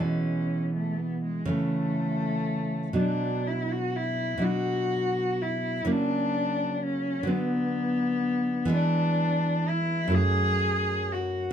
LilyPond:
<<
  \new Staff \with { instrumentName = "Cello" } { \time 6/8 \key b \dorian \tempo 4. = 42 cis'8. a16 b16 gis16 a4. | d'8 e'16 fis'16 e'8 fis'4 e'8 | d'4 cis'8 b4. | d'4 e'8 gis'4 fis'8 | }
  \new Staff \with { instrumentName = "Nylon-string guitar" } { \clef bass \time 6/8 \key b \dorian <b, e gis>4. <cis e a>4. | <b, fis d'>4. <b, fis d'>4. | <cis fis ais>4. <d fis b>4. | <e gis b>4. <fis, fis a>4. | }
>>